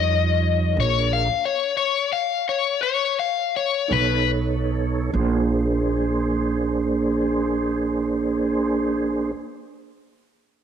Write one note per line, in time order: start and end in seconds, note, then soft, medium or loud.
0.00 0.75 F2 medium
0.00 0.75 G3 medium
0.00 0.76 D#4 medium
0.00 0.75 F4 medium
0.00 0.76 C#5 medium
0.00 0.77 D#5 medium
0.76 1.27 A#1 medium
0.76 1.28 A#3 medium
0.76 1.28 D4 medium
0.76 1.29 G#4 medium
0.76 1.28 A#4 medium
0.80 1.10 C#5 loud
1.13 1.43 F5 medium
1.45 1.76 C#5 medium
1.77 2.09 C#5 medium
2.13 2.45 F5 medium
2.49 2.81 C#5 medium
2.83 3.16 C#5 medium
3.20 3.54 F5 medium
3.57 3.92 C#5 medium
3.88 5.09 B1 medium
3.88 5.11 B3 medium
3.88 5.10 D#4 medium
3.88 5.11 A4 medium
3.88 5.11 C#5 medium
3.93 4.30 B4 medium
5.13 9.32 A#1 medium
5.13 9.31 A#3 medium
5.13 9.31 D4 medium
5.13 9.31 G#4 medium
5.13 9.32 C5 medium